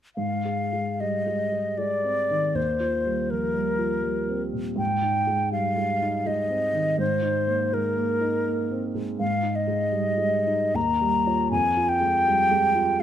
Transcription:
0.16 grand piano G#2, flute F5
0.45 grand piano G#4
0.73 grand piano G#3
1.00 grand piano G3, flute D#5
1.26 grand piano G#3
1.52 grand piano G#4
1.78 grand piano G#3, flute D5
2.04 grand piano C4
2.30 grand piano D#3
2.55 grand piano D#2, flute C5
2.80 grand piano F4
3.06 grand piano G3
3.30 grand piano F3, flute A#4
3.54 grand piano G3
3.79 grand piano F4
4.03 grand piano G3
4.28 grand piano C4
4.53 grand piano A#2
4.76 grand piano G#2, flute G5
5.02 grand piano D#4
5.27 grand piano G#3
5.52 grand piano G3, flute F5
5.77 grand piano G#3
6.02 grand piano D#4
6.26 grand piano G#3, flute D#5
6.50 grand piano C4
6.73 grand piano D#3
6.98 grand piano G#2, flute C5
7.22 grand piano D#4
7.47 grand piano A#3
7.72 grand piano G#3, flute A#4
7.97 grand piano A#3
8.21 grand piano D#4
8.46 grand piano A#3
8.71 grand piano C4
8.95 grand piano G#3
9.20 grand piano G#2, flute F5
9.43 grand piano D#4
9.55 flute D#5
9.67 grand piano G#3
9.92 grand piano G3
10.18 grand piano G#3
10.47 grand piano D#4
10.74 grand piano D#2, flute A#5
11.01 grand piano G3
11.27 grand piano F4 C#5
11.52 grand piano F2, flute G#5
11.77 grand piano F4
11.89 flute G5
12.01 grand piano G#3
12.26 grand piano G3
12.51 grand piano G#3
12.75 grand piano F4

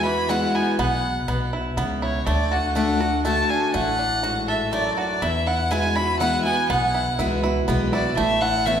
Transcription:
Already playing: steel-string acoustic guitar E2, upright bass E2, five-string banjo B3 E4
0.04 five-string banjo E3, steel-string acoustic guitar B3 F#4, fiddle B5
0.29 steel-string acoustic guitar E3 G#3 B3 F#4, five-string banjo E4, fiddle F#5
0.55 five-string banjo B3, fiddle G#5
0.79 upright bass B1, steel-string acoustic guitar B2, five-string banjo B3, fiddle F#5
1.28 upright bass B1, steel-string acoustic guitar B2, five-string banjo B3
1.53 five-string banjo E4
1.77 upright bass C#2, steel-string acoustic guitar C#3, five-string banjo B3
2.02 five-string banjo E4, fiddle C#5
2.27 upright bass D2, steel-string acoustic guitar D3, five-string banjo A3, fiddle D5
2.51 five-string banjo F#4, fiddle F#5
2.75 steel-string acoustic guitar D3 A3 D4 F#4, five-string banjo A3, fiddle F#5
3.00 steel-string acoustic guitar D4 F#4, five-string banjo F#4
3.25 steel-string acoustic guitar D3 A3 D4 F#4, five-string banjo A3, fiddle A5
3.50 five-string banjo D4, fiddle G#5
3.74 upright bass A1, steel-string acoustic guitar A2, five-string banjo A3, fiddle F#5
3.99 five-string banjo D4
4.23 steel-string acoustic guitar G#2, five-string banjo F#4
4.48 five-string banjo A4, fiddle E5
4.73 steel-string acoustic guitar F#2, five-string banjo A3, fiddle D5
4.98 five-string banjo F#4, fiddle D5
5.22 upright bass E2, steel-string acoustic guitar E2, five-string banjo E4, fiddle E5
5.47 five-string banjo E4, fiddle F#5
5.71 steel-string acoustic guitar E3 G#3 B3 F#4, five-string banjo E4, fiddle G#5
5.95 steel-string acoustic guitar B3 F#4, five-string banjo E4, fiddle B5
6.20 steel-string acoustic guitar E3 G#3 B3 F#4, five-string banjo E4, fiddle F#5
6.45 five-string banjo B3, steel-string acoustic guitar B3 F#4, fiddle G#5
6.69 upright bass B1, steel-string acoustic guitar B2, five-string banjo B3, fiddle F#5
6.95 five-string banjo E4
7.19 upright bass C#2, steel-string acoustic guitar E3 G#3 B3 F#4, five-string banjo E4
7.43 steel-string acoustic guitar B3 F#4, five-string banjo E4
7.68 upright bass B1, steel-string acoustic guitar E3 G#3 B3 F#4, five-string banjo B3
7.93 steel-string acoustic guitar B3 F#4, five-string banjo E4, fiddle D5
8.17 upright bass A1, steel-string acoustic guitar A2, five-string banjo A3, fiddle E5
8.41 five-string banjo E4, fiddle F#5
8.66 steel-string acoustic guitar E3 B3 C#4 E4, five-string banjo A3, fiddle E5

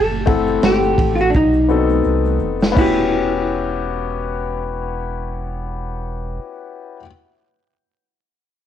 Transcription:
Already playing: sub bass F#1, hollow-body jazz guitar A4
0.11 high conga, shaker
0.26 upright piano A3 C4 E4 A4 F#5, kick, ride, low conga, shaker
0.47 shaker
0.62 sub bass G1, hollow-body jazz guitar G4, snare, hi-hat pedal, ride, high conga, shaker
0.83 shaker
0.98 sub bass A1, kick, ride, low conga, shaker
1.15 hollow-body jazz guitar F4, shaker
1.21 hollow-body jazz guitar F#4
1.30 hollow-body jazz guitar D4, shaker
1.34 sub bass B1, hollow-body jazz guitar D#4, kick
1.53 shaker
1.68 upright piano B3 C4 D4 F#4 A4, shaker
1.76 upright piano D#4
1.90 high conga, shaker
2.04 sub bass C2, shaker
2.25 high conga, shaker
2.40 sub bass F1, low conga, shaker
2.60 snare, shaker
2.72 upright piano B3 C#4, high conga
2.77 sub bass E1, upright piano E4 F#4, hollow-body jazz guitar E4, kick, crash
2.81 upright piano G4

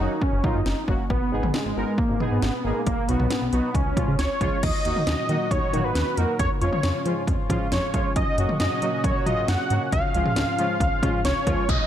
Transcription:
Already playing: analog synth lead D#4
0.00 analog polysynth F#3 A#3 C#4 F#4
0.22 analog synth lead C#4, kick
0.33 analog synth bass F#1
0.44 analog polysynth F#3 A#3 C#4 F4, analog synth lead D#4, kick, mid tom
0.55 analog synth bass F#2
0.66 analog synth bass F#1, snare
0.88 analog synth bass F#1, analog polysynth F#3 A#3 C#4 F#4, kick
1.10 analog synth bass G#1, analog synth lead B3, kick
1.32 analog synth bass G#1, analog polysynth G#3 B3 D#4 G#4
1.43 analog synth bass G#1, mid tom
1.54 analog synth lead G#3, snare
1.65 analog synth bass G#1
1.76 analog synth bass G#1, analog polysynth G#3 B3 D#4 A#4
1.98 analog synth lead A#3, kick
2.09 analog synth bass G#1
2.20 analog polysynth G#3 B3 D#4 G#4, analog synth lead B3, mid tom
2.31 analog synth bass G#2
2.42 analog synth bass G#1, snare
2.64 analog synth bass G#1, analog polysynth G#3 B3 D#4 G#4, analog synth lead A#3
2.87 analog synth bass B1, analog synth lead A#3, kick, closed hi-hat
3.09 analog synth bass B1, analog polysynth F#3 B3 D#4 F#4, analog synth lead B3, closed hi-hat
3.20 analog synth bass B1, mid tom
3.30 snare, closed hi-hat
3.42 analog synth bass B1
3.53 analog synth bass B1, analog polysynth F#3 B3 D#4 F#4, analog synth lead B3, closed hi-hat
3.75 analog synth bass C#2, analog synth lead C#4, kick, closed hi-hat
3.86 analog synth bass C#2
3.97 analog polysynth F3 G#3 C#4 F4, kick, closed hi-hat, mid tom
4.08 analog synth bass C#3
4.19 analog synth bass C#2, analog synth lead C#5, snare, closed hi-hat
4.41 analog synth bass C#2, analog polysynth F3 G#3 C#4 F4, kick, closed hi-hat
4.63 analog synth bass D#2, analog synth pad A#2 D#3 F#3 D#4 F#4, analog synth lead D#5, kick, closed hi-hat, crash
4.85 analog synth bass D#2, analog polysynth F#3 A#3 D#4 F#4, closed hi-hat
4.96 mid tom
5.07 analog synth bass D#2, analog synth lead D#5, snare, closed hi-hat
5.29 analog synth bass D#3, analog polysynth F#3 A#3 D#4 F#4, closed hi-hat
5.51 analog synth bass D#2, analog synth lead C#5, kick, closed hi-hat
5.73 analog synth bass D#3, analog polysynth F#3 A#3 D#4 F#4, closed hi-hat, mid tom
5.84 analog synth lead B4
5.95 analog synth bass D#2, snare, closed hi-hat
6.17 analog synth bass F2, analog polysynth F#3 A#3 D#4 F#4, analog synth lead A#4, closed hi-hat
6.39 analog synth bass F2, analog synth pad G#2 C#3 F3 C#4 F4, analog synth lead C#5, kick, closed hi-hat
6.61 analog synth bass F2, analog polysynth F3 G#3 C#4 F4, analog synth lead C#5, closed hi-hat
6.73 mid tom
6.83 analog synth bass F2, snare, closed hi-hat
7.06 analog polysynth F3 G#3 C#4 F4, analog synth bass F3, closed hi-hat
7.27 analog synth bass F2, kick, closed hi-hat
7.50 analog synth bass F3, analog polysynth F3 G#3 C#4 F4, kick, closed hi-hat, mid tom
7.72 analog synth bass F2, analog synth lead C#5, snare, closed hi-hat
7.94 analog synth bass F#2, analog polysynth F3 G#3 C#4 F4, kick, closed hi-hat
8.16 analog synth bass F#2, analog synth pad A#2 F#3 F#4, analog synth lead D#5, kick, closed hi-hat
8.38 analog synth bass F#2, analog polysynth F#3 A#3 C#4 F#4, closed hi-hat
8.49 mid tom
8.60 analog synth bass F#2, analog synth lead D#5, snare, closed hi-hat
8.82 analog polysynth F#3 A#3 C#4 F#4, analog synth bass F#3, closed hi-hat
9.04 analog synth bass F#2, analog synth lead C#5, kick, closed hi-hat
9.26 analog polysynth F#3 A#3 C#4 F4, analog synth bass F#3, analog synth lead D#5, closed hi-hat, mid tom
9.48 analog synth bass F#2, analog synth lead F#5, snare, closed hi-hat
9.70 analog synth bass G#2, analog polysynth F#3 A#3 C#4 F#4, closed hi-hat
9.92 analog synth bass C#2, analog synth pad G#2 F3 F4, analog synth lead F5, kick, closed hi-hat
10.14 analog synth bass C#2, analog polysynth F3 G#3 C#4 F4, closed hi-hat
10.26 mid tom
10.36 analog synth bass C#2, snare, closed hi-hat
10.59 analog synth bass C#3, analog polysynth F3 G#3 C#4 F4, closed hi-hat
10.80 analog synth bass C#2, kick, closed hi-hat
11.03 analog synth bass C#3, analog polysynth F3 G#3 C#4 F4, kick, closed hi-hat, mid tom
11.25 analog synth bass C#2, analog synth lead C#5, snare, closed hi-hat
11.47 analog synth bass D#2, analog polysynth F3 G#3 C#4 F4, kick, closed hi-hat, cowbell
11.69 analog synth bass B1, analog synth pad B2 D#3 F#3 D#4 F#4, analog synth lead D#5, kick, closed hi-hat, downlifter

